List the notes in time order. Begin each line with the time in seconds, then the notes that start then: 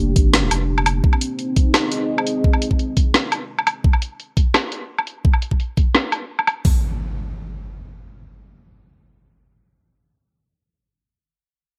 Already playing: F1 A#3 D4 G4 D5
0.16 G#1, kick, closed hi-hat
0.34 snare
0.51 F1, closed hi-hat, low woodblock
0.78 low woodblock
0.86 closed hi-hat, low woodblock
1.04 C4, kick
1.13 low woodblock
1.17 D#4
1.21 closed hi-hat
1.39 closed hi-hat
1.50 G#4
1.56 D#5, kick, closed hi-hat
1.74 snare, low woodblock
1.92 closed hi-hat
2.18 low woodblock
2.27 closed hi-hat
2.44 kick
2.53 low woodblock
2.62 closed hi-hat
2.71 kick
2.79 closed hi-hat
2.97 kick, closed hi-hat
3.14 snare
3.32 closed hi-hat, low woodblock
3.59 low woodblock
3.67 closed hi-hat, low woodblock
3.84 kick
3.93 low woodblock
4.02 closed hi-hat
4.20 closed hi-hat
4.37 kick, closed hi-hat
4.54 snare, low woodblock
4.72 closed hi-hat
4.99 low woodblock
5.07 closed hi-hat
5.25 kick
5.34 low woodblock
5.42 closed hi-hat
5.51 kick
5.60 closed hi-hat
5.77 kick, closed hi-hat
5.95 snare
6.12 closed hi-hat, low woodblock
6.39 low woodblock
6.47 closed hi-hat, low woodblock
6.65 kick, open hi-hat, impact